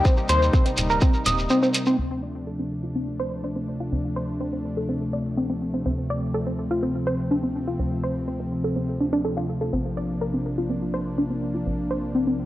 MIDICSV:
0, 0, Header, 1, 6, 480
1, 0, Start_track
1, 0, Tempo, 483871
1, 52, Time_signature, 4, 2, 24, 8
1, 12356, End_track
2, 0, Start_track
2, 0, Title_t, "Synth arpeggio sound"
2, 0, Program_c, 0, 84
2, 51, Note_on_c, 0, 60, 81
2, 139, Note_off_c, 0, 60, 0
2, 291, Note_on_c, 0, 72, 100
2, 407, Note_off_c, 0, 72, 0
2, 531, Note_on_c, 0, 60, 82
2, 619, Note_off_c, 0, 60, 0
2, 653, Note_on_c, 0, 60, 77
2, 704, Note_off_c, 0, 60, 0
2, 893, Note_on_c, 0, 70, 74
2, 978, Note_off_c, 0, 70, 0
2, 1011, Note_on_c, 0, 60, 84
2, 1099, Note_off_c, 0, 60, 0
2, 1251, Note_on_c, 0, 75, 75
2, 1367, Note_off_c, 0, 75, 0
2, 1491, Note_on_c, 0, 60, 83
2, 1579, Note_off_c, 0, 60, 0
2, 1613, Note_on_c, 0, 60, 77
2, 1664, Note_off_c, 0, 60, 0
2, 1853, Note_on_c, 0, 60, 78
2, 1938, Note_off_c, 0, 60, 0
2, 1971, Note_on_c, 0, 60, 74
2, 2024, Note_off_c, 0, 60, 0
2, 2211, Note_on_c, 0, 74, 73
2, 2300, Note_off_c, 0, 74, 0
2, 2451, Note_on_c, 0, 69, 78
2, 2504, Note_off_c, 0, 69, 0
2, 2573, Note_on_c, 0, 60, 73
2, 2624, Note_off_c, 0, 60, 0
2, 2813, Note_on_c, 0, 65, 72
2, 2925, Note_off_c, 0, 65, 0
2, 2931, Note_on_c, 0, 60, 78
2, 3019, Note_off_c, 0, 60, 0
2, 3171, Note_on_c, 0, 72, 94
2, 3287, Note_off_c, 0, 72, 0
2, 3410, Note_on_c, 0, 62, 79
2, 3464, Note_off_c, 0, 62, 0
2, 3532, Note_on_c, 0, 60, 70
2, 3584, Note_off_c, 0, 60, 0
2, 3772, Note_on_c, 0, 65, 73
2, 3885, Note_off_c, 0, 65, 0
2, 3891, Note_on_c, 0, 60, 76
2, 3979, Note_off_c, 0, 60, 0
2, 4130, Note_on_c, 0, 72, 92
2, 4247, Note_off_c, 0, 72, 0
2, 4370, Note_on_c, 0, 60, 76
2, 4459, Note_off_c, 0, 60, 0
2, 4493, Note_on_c, 0, 60, 70
2, 4544, Note_off_c, 0, 60, 0
2, 4733, Note_on_c, 0, 69, 72
2, 4819, Note_off_c, 0, 69, 0
2, 4850, Note_on_c, 0, 60, 82
2, 4939, Note_off_c, 0, 60, 0
2, 5091, Note_on_c, 0, 74, 72
2, 5207, Note_off_c, 0, 74, 0
2, 5331, Note_on_c, 0, 60, 80
2, 5420, Note_off_c, 0, 60, 0
2, 5454, Note_on_c, 0, 60, 72
2, 5505, Note_off_c, 0, 60, 0
2, 5693, Note_on_c, 0, 60, 73
2, 5779, Note_off_c, 0, 60, 0
2, 5811, Note_on_c, 0, 60, 79
2, 5864, Note_off_c, 0, 60, 0
2, 6052, Note_on_c, 0, 74, 71
2, 6140, Note_off_c, 0, 74, 0
2, 6292, Note_on_c, 0, 69, 77
2, 6345, Note_off_c, 0, 69, 0
2, 6414, Note_on_c, 0, 60, 74
2, 6465, Note_off_c, 0, 60, 0
2, 6654, Note_on_c, 0, 65, 73
2, 6766, Note_off_c, 0, 65, 0
2, 6772, Note_on_c, 0, 60, 78
2, 6860, Note_off_c, 0, 60, 0
2, 7011, Note_on_c, 0, 72, 96
2, 7127, Note_off_c, 0, 72, 0
2, 7251, Note_on_c, 0, 62, 79
2, 7304, Note_off_c, 0, 62, 0
2, 7374, Note_on_c, 0, 60, 72
2, 7425, Note_off_c, 0, 60, 0
2, 7614, Note_on_c, 0, 65, 76
2, 7725, Note_off_c, 0, 65, 0
2, 7731, Note_on_c, 0, 60, 76
2, 7820, Note_off_c, 0, 60, 0
2, 7971, Note_on_c, 0, 72, 93
2, 8087, Note_off_c, 0, 72, 0
2, 8212, Note_on_c, 0, 60, 78
2, 8300, Note_off_c, 0, 60, 0
2, 8334, Note_on_c, 0, 60, 70
2, 8385, Note_off_c, 0, 60, 0
2, 8573, Note_on_c, 0, 69, 73
2, 8659, Note_off_c, 0, 69, 0
2, 8692, Note_on_c, 0, 60, 81
2, 8780, Note_off_c, 0, 60, 0
2, 8932, Note_on_c, 0, 62, 71
2, 8985, Note_off_c, 0, 62, 0
2, 9054, Note_on_c, 0, 62, 98
2, 9139, Note_off_c, 0, 62, 0
2, 9171, Note_on_c, 0, 69, 79
2, 9260, Note_off_c, 0, 69, 0
2, 9293, Note_on_c, 0, 65, 71
2, 9379, Note_off_c, 0, 65, 0
2, 9533, Note_on_c, 0, 69, 74
2, 9645, Note_off_c, 0, 69, 0
2, 9651, Note_on_c, 0, 60, 78
2, 9704, Note_off_c, 0, 60, 0
2, 9892, Note_on_c, 0, 74, 70
2, 9980, Note_off_c, 0, 74, 0
2, 10131, Note_on_c, 0, 70, 79
2, 10184, Note_off_c, 0, 70, 0
2, 10254, Note_on_c, 0, 60, 72
2, 10305, Note_off_c, 0, 60, 0
2, 10494, Note_on_c, 0, 65, 73
2, 10605, Note_off_c, 0, 65, 0
2, 10611, Note_on_c, 0, 60, 78
2, 10700, Note_off_c, 0, 60, 0
2, 10851, Note_on_c, 0, 72, 97
2, 10967, Note_off_c, 0, 72, 0
2, 11091, Note_on_c, 0, 62, 80
2, 11144, Note_off_c, 0, 62, 0
2, 11213, Note_on_c, 0, 60, 71
2, 11264, Note_off_c, 0, 60, 0
2, 11454, Note_on_c, 0, 65, 74
2, 11565, Note_off_c, 0, 65, 0
2, 11571, Note_on_c, 0, 60, 75
2, 11660, Note_off_c, 0, 60, 0
2, 11812, Note_on_c, 0, 72, 94
2, 11927, Note_off_c, 0, 72, 0
2, 12052, Note_on_c, 0, 60, 77
2, 12140, Note_off_c, 0, 60, 0
2, 12174, Note_on_c, 0, 60, 72
2, 12225, Note_off_c, 0, 60, 0
2, 12356, End_track
3, 0, Start_track
3, 0, Title_t, "Analog synth pad"
3, 0, Program_c, 1, 89
3, 0, Note_on_c, 1, 48, 85
3, 0, Note_on_c, 1, 55, 78
3, 0, Note_on_c, 1, 58, 76
3, 0, Note_on_c, 1, 63, 91
3, 1931, Note_off_c, 1, 48, 0
3, 1932, Note_off_c, 1, 58, 0
3, 1933, Note_off_c, 1, 55, 0
3, 1933, Note_off_c, 1, 63, 0
3, 1970, Note_on_c, 1, 53, 76
3, 1970, Note_on_c, 1, 62, 89
3, 1971, Note_on_c, 1, 48, 80
3, 1971, Note_on_c, 1, 57, 72
3, 5772, Note_off_c, 1, 62, 0
3, 5812, Note_on_c, 1, 60, 88
3, 9611, Note_off_c, 1, 57, 0
3, 9613, Note_off_c, 1, 60, 0
3, 9651, Note_on_c, 1, 58, 74
3, 9651, Note_on_c, 1, 62, 89
3, 12356, Note_off_c, 1, 48, 0
3, 12356, Note_off_c, 1, 53, 0
3, 12356, Note_off_c, 1, 58, 0
3, 12356, Note_off_c, 1, 62, 0
3, 12356, End_track
4, 0, Start_track
4, 0, Title_t, "Analog synth bass"
4, 0, Program_c, 2, 38
4, 291, Note_on_c, 2, 39, 86
4, 495, Note_off_c, 2, 39, 0
4, 771, Note_on_c, 2, 27, 80
4, 975, Note_off_c, 2, 27, 0
4, 1251, Note_on_c, 2, 27, 102
4, 1455, Note_off_c, 2, 27, 0
4, 1970, Note_on_c, 2, 38, 80
4, 3867, Note_off_c, 2, 38, 0
4, 3891, Note_on_c, 2, 38, 82
4, 5787, Note_off_c, 2, 38, 0
4, 5812, Note_on_c, 2, 38, 83
4, 7708, Note_off_c, 2, 38, 0
4, 7732, Note_on_c, 2, 38, 81
4, 9628, Note_off_c, 2, 38, 0
4, 9651, Note_on_c, 2, 34, 82
4, 11548, Note_off_c, 2, 34, 0
4, 11571, Note_on_c, 2, 34, 82
4, 12356, Note_off_c, 2, 34, 0
4, 12356, End_track
5, 0, Start_track
5, 0, Title_t, "Shekere"
5, 52, Note_on_c, 9, 82, 43
5, 151, Note_off_c, 9, 82, 0
5, 169, Note_on_c, 9, 82, 24
5, 269, Note_off_c, 9, 82, 0
5, 288, Note_on_c, 9, 82, 84
5, 387, Note_off_c, 9, 82, 0
5, 422, Note_on_c, 9, 82, 37
5, 521, Note_off_c, 9, 82, 0
5, 533, Note_on_c, 9, 82, 51
5, 633, Note_off_c, 9, 82, 0
5, 656, Note_on_c, 9, 82, 24
5, 755, Note_off_c, 9, 82, 0
5, 767, Note_on_c, 9, 82, 81
5, 866, Note_off_c, 9, 82, 0
5, 892, Note_on_c, 9, 82, 39
5, 991, Note_off_c, 9, 82, 0
5, 1003, Note_on_c, 9, 82, 51
5, 1102, Note_off_c, 9, 82, 0
5, 1127, Note_on_c, 9, 82, 24
5, 1226, Note_off_c, 9, 82, 0
5, 1250, Note_on_c, 9, 82, 80
5, 1349, Note_off_c, 9, 82, 0
5, 1375, Note_on_c, 9, 82, 39
5, 1474, Note_off_c, 9, 82, 0
5, 1484, Note_on_c, 9, 82, 48
5, 1584, Note_off_c, 9, 82, 0
5, 1616, Note_on_c, 9, 82, 25
5, 1715, Note_off_c, 9, 82, 0
5, 1728, Note_on_c, 9, 82, 79
5, 1828, Note_off_c, 9, 82, 0
5, 1846, Note_on_c, 9, 82, 38
5, 1945, Note_off_c, 9, 82, 0
5, 12356, End_track
6, 0, Start_track
6, 0, Title_t, "Drums"
6, 51, Note_on_c, 9, 36, 106
6, 150, Note_off_c, 9, 36, 0
6, 291, Note_on_c, 9, 42, 100
6, 390, Note_off_c, 9, 42, 0
6, 531, Note_on_c, 9, 36, 108
6, 630, Note_off_c, 9, 36, 0
6, 653, Note_on_c, 9, 42, 60
6, 752, Note_off_c, 9, 42, 0
6, 771, Note_on_c, 9, 42, 95
6, 870, Note_off_c, 9, 42, 0
6, 1011, Note_on_c, 9, 36, 115
6, 1110, Note_off_c, 9, 36, 0
6, 1251, Note_on_c, 9, 42, 105
6, 1350, Note_off_c, 9, 42, 0
6, 1731, Note_on_c, 9, 42, 99
6, 1830, Note_off_c, 9, 42, 0
6, 12356, End_track
0, 0, End_of_file